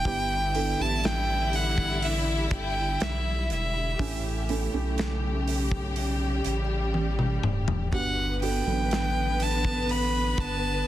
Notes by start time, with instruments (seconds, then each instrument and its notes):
Already playing: violin G5
0.05 sub bass G1, felt piano G2 B3 D4 E4 G4, string section D3 G3 E4, kick, hi-hat pedal, open hi-hat
0.54 felt piano B3 D4 E4 A4, hi-hat pedal, open hi-hat
0.79 sub bass A1, felt piano B3 D4 E4 G4, violin A5
1.04 violin G5, snare, hi-hat pedal, open hi-hat
1.53 violin F#5, hi-hat pedal, open hi-hat
1.78 kick
2.02 violin E5, hi-hat pedal, open hi-hat
2.51 sub bass G1, violin G5, kick, hi-hat pedal, open hi-hat
3.00 sub bass B1, violin E5, snare, hi-hat pedal, open hi-hat
3.50 sub bass E1, violin E5, hi-hat pedal, open hi-hat
3.99 sub bass A1, felt piano A2 A3 C#4 E4 G4, string section C#3 A3 G4, kick, hi-hat pedal, open hi-hat
4.49 felt piano A3 C#4 E4 A4, hi-hat pedal, open hi-hat
4.73 sub bass B1, felt piano A3 C#4 E4 G4
4.98 snare, hi-hat pedal, open hi-hat
5.47 hi-hat pedal, open hi-hat
5.71 kick
5.96 string section G3, hi-hat pedal, open hi-hat
6.44 sub bass A1, hi-hat pedal, open hi-hat
6.94 high tom
7.19 mid tom
7.43 sub bass D1, mid tom
7.68 floor tom
7.92 sub bass G1, felt piano G2 B3 D4 F#4 G4, string section D3 B3 B4, violin F#5, kick, splash
8.42 felt piano B3 D4 F#4 A4, violin G5, hi-hat pedal, open hi-hat
8.67 sub bass A1, felt piano F#3 B3 D4 A4
8.91 snare, hi-hat pedal, open hi-hat
9.40 violin A5, hi-hat pedal, open hi-hat
9.65 kick
9.89 violin B5, hi-hat pedal, open hi-hat
10.38 sub bass G1, violin A5, kick, hi-hat pedal, open hi-hat